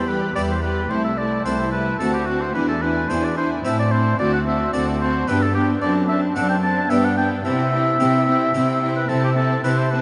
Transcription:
Already playing: harpsichord E2 B3 E4 G4, cello section E2
0.08 viola section G3, violin section G4 B5, oboe B4
0.35 cello section E2, harpsichord E2 B3 E4 G4, viola section G3, violin section G4 B5, oboe D5
0.51 oboe C5
0.63 viola section G3, violin section G4 B5, oboe B4
0.90 cello section C2, harpsichord C2, viola section A3, violin section E4 A5, oboe C5
1.04 oboe E5
1.17 viola section A3, violin section E4 A5, oboe D5
1.45 cello section C2, harpsichord C2 C4 E4 A4, viola section A3, violin section E4 A5, oboe C5
1.71 viola section A3, violin section E4 A5, oboe B4
1.99 cello section D2, harpsichord D2 C4 F#4 A4, viola section C4, violin section F#4 A5, oboe A4
2.14 oboe G4
2.27 viola section C4, oboe F#4, violin section F#4 A5
2.41 oboe C5
2.54 cello section E2, harpsichord E2, viola section D4, violin section E4 G#5, oboe B4
2.69 oboe A4
2.81 viola section D4, violin section E4 G#5, oboe B4
3.09 cello section E2, harpsichord E2 D4 E4 G#4, viola section D4, violin section E4 G#5, oboe C5
3.25 oboe D5
3.37 viola section D4, violin section E4 G#5, oboe C5
3.64 cello section A2, harpsichord A2 C4 E4 A4, viola section C4, violin section E4 A5, oboe E5
3.80 oboe D5
3.91 viola section C4, violin section E4 A5, oboe C5
4.18 cello section D2, harpsichord D2, viola section C4, violin section F#4 A5, oboe D5
4.33 oboe F#5
4.46 viola section C4, violin section F#4 A5, oboe E5
4.73 cello section D2, harpsichord D2 C4 D4 F#4, viola section C4, violin section F#4 A5, oboe D5
5.00 viola section C4, violin section F#4 A5, oboe C5
5.28 cello section G2, harpsichord G2 B3 D4 G4, viola section B3, violin section D4 G5, oboe B4
5.42 oboe A4
5.55 viola section B3, violin section D4 G5, oboe G4
5.81 harpsichord F#2, cello section F#2, viola section C4, violin section D4 A5, oboe D5
6.08 viola section C4, violin section D4 A5, oboe E5
6.35 harpsichord F#2 C4 D4 A4, cello section F#2, viola section C4, violin section D4 A5, oboe F#5
6.50 oboe G5
6.62 viola section C4, violin section D4 A5, oboe A5
6.90 cello section G2, harpsichord G2 B3 D4 G4, viola section B3, violin section D4 G5, oboe E5
7.05 oboe F#5
7.17 viola section B3, violin section D4 G5, oboe G5
7.45 cello section C3, harpsichord C3, viola section C4, violin section E4 G5, oboe E5
7.72 viola section C4, violin section E4 G5
8.00 cello section C3, harpsichord C3 C4 G4, viola section C4, violin section E4 G5
8.28 viola section C4, violin section E4 G5
8.54 harpsichord C3 C4 G4, cello section C3, viola section C4, violin section E4 G5
8.82 viola section C4, violin section E4 G5
8.96 oboe B4
9.09 harpsichord C3, cello section C3, viola section C4, violin section E4 A5, oboe A4
9.24 oboe G4
9.37 viola section C4, violin section E4 A5, oboe A4
9.64 cello section C3, harpsichord C3 C4 E4, viola section C4, violin section E4 A5, oboe B4
9.78 oboe C5
9.91 viola section C4, violin section E4 A5, oboe B4

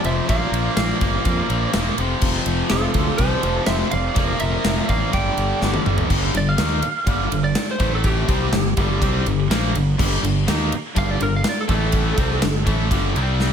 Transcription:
Already playing: distorted electric guitar F2 C3 F3
0.03 fingered electric bass F1, distorted electric guitar F2 C3 F3, lead electric guitar C5 E5, ride
0.07 distorted electric guitar F2
0.27 fingered electric bass A#1, distorted electric guitar A#2 F3 A#3, lead electric guitar D5 F5, kick, ride
0.52 fingered electric bass A#1, distorted electric guitar A#2 F3 A#3, ride
0.77 fingered electric bass A#1, distorted electric guitar A#2 F3 A#3, lead electric guitar D5 F5, snare, ride
1.00 fingered electric bass G1, distorted electric guitar A#2 F3 A#3, kick, ride
1.05 distorted electric guitar A#2
1.24 fingered electric bass F2, distorted electric guitar A#2 F3 A#3, kick, ride
1.49 fingered electric bass A#1, distorted electric guitar A#2 F3 A#3, ride
1.73 fingered electric bass E1, distorted electric guitar A#2 F3 A#3, snare, ride
1.98 fingered electric bass F1, distorted electric guitar F2 C3 F3, ride
2.21 fingered electric bass F1, distorted electric guitar F2 C3 F3, kick, crash
2.46 fingered electric bass F1, distorted electric guitar F2 C3 F3, ride
2.70 fingered electric bass F1, distorted electric guitar F2 C3 F3, lead electric guitar A4, snare, ride
2.74 lead electric guitar F4
2.94 fingered electric bass D2, distorted electric guitar F2 C3 F3, kick, ride
3.18 fingered electric bass C2, distorted electric guitar F2 C3 F3, lead electric guitar A4 C5, kick, ride
3.43 fingered electric bass F1, distorted electric guitar F2 C3 F3, ride
3.66 fingered electric bass F1, distorted electric guitar F2 C3 F3, lead electric guitar C5 E5, snare, ride
3.91 fingered electric bass F1, distorted electric guitar F2 C3 F3, lead electric guitar D5 F5, ride
4.16 fingered electric bass F1, distorted electric guitar A#2 F3 A#3, kick, ride
4.40 fingered electric bass F1, distorted electric guitar A#2 F3 A#3, lead electric guitar A#4 E5, ride
4.64 fingered electric bass F1, distorted electric guitar A#2 F3 A#3, snare, ride
4.88 fingered electric bass A1, distorted electric guitar A#2 F3 A#3, lead electric guitar D5 F5, kick, ride
5.12 fingered electric bass G1, distorted electric guitar G2 D3 G3, lead electric guitar D5 G5, kick, ride
5.37 fingered electric bass G1, distorted electric guitar G2 D3 G3, ride
5.62 fingered electric bass G1, distorted electric guitar G2 D3 G3, snare
5.74 high tom
5.86 fingered electric bass G1, distorted electric guitar G2 D3 G3, mid tom
5.90 distorted electric guitar G2
5.98 floor tom
6.10 fingered electric bass G1, distorted electric guitar G2 D3 G3, kick, crash
6.34 fingered electric bass G1, distorted electric guitar G2 D3, lead electric guitar D5, ride
6.49 lead electric guitar F5
6.58 fingered electric bass D#2, distorted electric guitar D#3 A#3 D#4, snare, ride
6.82 muted fingered electric bass stroke, muted distorted electric guitar stroke, ride
7.06 fingered electric bass G1, distorted electric guitar G2 D3 G3, kick, ride
7.32 fingered electric bass G1, distorted electric guitar G2 D3, ride
7.44 lead electric guitar D5
7.55 snare, ride
7.71 lead electric guitar C5
7.80 fingered electric bass A1, distorted electric guitar A2 E3 A3, kick, ride
7.95 lead electric guitar A4
8.04 lead electric guitar G4, kick, ride
8.28 fingered electric bass C2, distorted electric guitar C3 G3 C4, kick, ride
8.52 fingered electric bass G1, distorted electric guitar G2 D3, snare, ride
8.77 fingered electric bass G1, distorted electric guitar G2 D3 G3, kick, ride
9.01 fingered electric bass C2, distorted electric guitar C3 G3 C4, kick, ride
9.26 fingered electric bass G1, distorted electric guitar G2 D3, ride
9.50 fingered electric bass A#1, distorted electric guitar A#2 F3 A#3, snare, ride
9.74 fingered electric bass G1, distorted electric guitar G2 D3, ride
9.98 fingered electric bass G1, distorted electric guitar G2 D3 G3, kick, crash
10.22 fingered electric bass G1, distorted electric guitar G2 D3, ride
10.47 fingered electric bass D#2, distorted electric guitar D#3 A#3 D#4, snare, ride
10.72 muted distorted electric guitar stroke, muted fingered electric bass stroke, ride
10.96 fingered electric bass G1, distorted electric guitar G2 D3 G3, lead electric guitar F5, kick, ride
11.11 lead electric guitar D5
11.20 fingered electric bass G1, distorted electric guitar G2 D3, lead electric guitar A#4, ride
11.36 lead electric guitar F5
11.44 snare, ride
11.49 lead electric guitar D5
11.61 lead electric guitar A4
11.68 fingered electric bass A1, distorted electric guitar A2 E3 A3, lead electric guitar A4, kick, ride
11.92 kick, ride
12.17 fingered electric bass C2, distorted electric guitar C3 G3 C4, kick, ride
12.42 fingered electric bass G1, distorted electric guitar G2 D3, snare, ride
12.66 fingered electric bass A1, distorted electric guitar A2 E3 A3, kick, ride
12.91 fingered electric bass G1, distorted electric guitar G2 D3 G3, kick, ride
13.15 fingered electric bass C2, distorted electric guitar C3 G3 C4, ride
13.40 snare

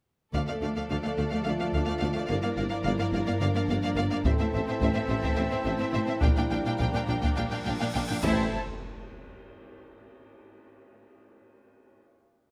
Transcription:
0.33 cello section D2, double bass section D2, tuba D2, trombone section F3 A3, string section F3 D4 A4 D5, viola section A3, french horn section A4, violin section D5 F5, taiko
0.47 cello section D2, viola section A3, violin section D5 F5
0.61 tuba D2, double bass section D2, cello section D2, viola section A3, violin section D5 F5
0.76 cello section D2, viola section A3, violin section D5 F5
0.89 tuba D2, cello section D2, double bass section D2, viola section A3, violin section D5 F5
1.03 cello section D2, viola section A3, violin section D5 F5
1.17 double bass section D2, tuba D2, cello section D2, viola section A3, violin section D5 F5
1.30 cello section D2, viola section A3, violin section D5 F5
1.43 double bass section D2, tuba D2, cello section D2, viola section A3, french horn section F4, violin section F5
1.48 violin section D5
1.59 cello section D2, viola section A3, violin section D5 F5
1.73 double bass section D2, cello section D2, tuba D2, viola section A3, violin section D5 F5
1.86 cello section D2, viola section A3, violin section D5 F5
1.99 double bass section D2, tuba D2, cello section D2, viola section A3, violin section D5 F5
2.13 cello section D2, viola section A3, violin section D5 F5
2.28 double bass section G1, tuba G1, cello section G2, viola section A#3, trombone section A#3, french horn section E4, string section A#4, violin section D5 F5
2.42 cello section G2, viola section A#3, violin section D5 F5
2.57 double bass section G1, tuba G1, cello section G2, viola section A#3, violin section D5 F5
2.69 cello section G2, viola section A#3, violin section D5 F5
2.83 double bass section G1, tuba G1, cello section G2, viola section A#3, violin section D5 F5
2.98 cello section G2, viola section A#3, violin section D5 F5
3.12 double bass section G1, tuba G1, cello section G2, viola section A#3, violin section D5 F5
3.25 cello section G2, viola section A#3, violin section D5 F5
3.40 double bass section G1, tuba G1, cello section G2, viola section A#3, french horn section D4, violin section D5 F5
3.54 cello section G2, viola section A#3, violin section D5 F5
3.68 double bass section G1, tuba G1, cello section G2, viola section A#3, violin section D5 F5
3.82 cello section G2, viola section A#3, violin section D5 F5
3.96 double bass section G1, tuba G1, cello section G2, viola section A#3, violin section D5 F5
4.10 cello section G2, viola section A#3, violin section D5 F5
4.23 double bass section A1, tuba A1, cello section A2, trombone section E3 C4, viola section C4, string section C4 E4 A4 E5, french horn section A4, violin section C5 E5, taiko
4.38 cello section A2, viola section C4, violin section C5 E5
4.53 double bass section A1, tuba A1, cello section A2, viola section C4, violin section C5 E5
4.67 cello section A2, viola section C4, violin section C5 E5
4.80 double bass section A1, tuba A1, cello section A2, viola section C4, violin section C5 E5, taiko
4.93 cello section A2, viola section C4, violin section C5 E5
5.07 double bass section A1, tuba A1, cello section A2, viola section C4, violin section C5 E5
5.22 cello section A2, viola section C4, violin section C5 E5, taiko
5.34 double bass section A1, tuba A1, cello section A2, viola section C4, french horn section E4, violin section C5 E5
5.50 cello section A2, viola section C4, violin section C5 E5
5.64 tuba A1, double bass section A1, cello section A2, viola section C4, violin section C5 E5
5.78 cello section A2, viola section C4, violin section C5 E5
5.92 tuba A1, double bass section A1, cello section A2, viola section C4, violin section C5 E5
6.06 cello section A2, viola section C4, violin section C5 E5
6.20 tuba A#1, double bass section A#1, cello section A#2, string section F3 D4 A#4 G5, trombone section F3 G3, viola section D4, french horn section E4, violin section F5 G5, taiko, cymbal swell
6.36 cello section A#2, viola section D4, violin section F5 G5
6.50 tuba A#1, double bass section A#1, cello section A#2, viola section D4, violin section F5 G5
6.64 cello section A#2, viola section D4, violin section F5 G5
6.77 tuba A#1, double bass section A#1, cello section A#2, french horn section D4, viola section D4, violin section F5 G5, taiko
6.93 cello section A#2, viola section D4, violin section F5 G5
7.07 tuba A#1, double bass section A#1, cello section A#2, viola section D4, violin section F5 G5
7.22 cello section A#2, viola section D4, violin section F5 G5, taiko
7.36 tuba A#1, double bass section A#1, cello section A#2, viola section D4, violin section F5 G5
7.51 cello section A#2, viola section D4, violin section F5 G5
7.65 tuba A#1, double bass section A#1, cello section A#2, viola section D4, violin section F5 G5
7.79 cello section A#2, viola section D4, violin section F5 G5
7.93 tuba A#1, double bass section A#1, cello section A#2, viola section D4, violin section F5 G5
8.08 cello section A#2, viola section D4, violin section F5 G5
8.22 tuba A1, double bass section A1, cello section A2, trombone section E3 C4, french horn section A3, string section C4 E4 A4 A5, viola section E4, violin section C5 E5, impact

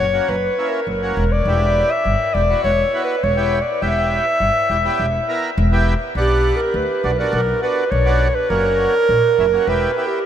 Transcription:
Already playing: clarinet C#5
0.00 upright bass F#1
0.13 accordion A#3 C#4 F#4
0.29 upright bass F#1, clarinet B4
0.58 accordion A#3 C#4 E4
0.69 clarinet A#4
0.87 upright bass F#1, clarinet A#4
1.02 accordion A#3 C#4 F#4
1.17 upright bass E1
1.32 clarinet D5
1.45 upright bass E1, accordion B3 E4 G4
1.91 clarinet E5
2.05 upright bass G1
2.34 upright bass E1, accordion E4 G4, clarinet D5
2.49 accordion B3 E4 F#4
2.64 upright bass E1, clarinet C#5
2.93 accordion B3 E4 F#4
3.04 clarinet B4
3.23 upright bass E1, clarinet C#5
3.37 accordion B3 E4 G4
3.62 clarinet D5
3.81 upright bass E1, accordion B3 E4 G4, clarinet E5
4.40 upright bass G1
4.69 upright bass E1, accordion E4 G4
4.84 accordion B3 E4 G4
4.99 upright bass E1
5.29 accordion B3 E4 A#4
5.58 upright bass E1
5.72 accordion B3 E4 G4
6.15 upright bass B1, accordion B3 D4 F#5
6.20 clarinet G4
6.56 clarinet A#4
6.74 upright bass D2, clarinet B4
7.04 upright bass B1, accordion D4 F#4
7.19 accordion B3 D4 F#4, clarinet A#4
7.33 upright bass B1, clarinet A#4
7.62 accordion B3 D4 F#4, clarinet B4
7.91 upright bass B1, clarinet C#5
8.05 accordion B3 D4 F#4
8.35 clarinet B4
8.49 upright bass F#1, accordion A#3 C#4 F#4, clarinet A#4
9.09 upright bass A#1
9.38 upright bass F#1, accordion C#4 E4
9.53 accordion A#3 C#4 F#4
9.67 upright bass E1, accordion B3 E4 G4, clarinet B4
9.97 accordion B3 E4 G4
10.07 clarinet G4

